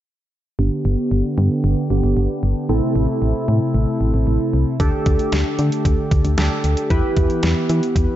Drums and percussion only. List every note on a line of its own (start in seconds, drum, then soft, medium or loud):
4.80 kick loud
4.80 closed hi-hat medium
5.06 kick medium
5.06 closed hi-hat medium
5.19 closed hi-hat soft
5.32 snare loud
5.32 closed hi-hat medium
5.59 closed hi-hat medium
5.72 closed hi-hat medium
5.85 kick medium
5.85 closed hi-hat medium
6.11 kick medium
6.11 closed hi-hat medium
6.25 closed hi-hat medium
6.38 snare loud
6.38 closed hi-hat medium
6.64 closed hi-hat medium
6.77 closed hi-hat medium
6.90 kick medium
6.90 closed hi-hat medium
7.17 kick medium
7.17 closed hi-hat medium
7.30 closed hi-hat soft
7.43 snare loud
7.43 closed hi-hat medium
7.69 closed hi-hat medium
7.83 closed hi-hat medium
7.96 kick medium
7.96 closed hi-hat medium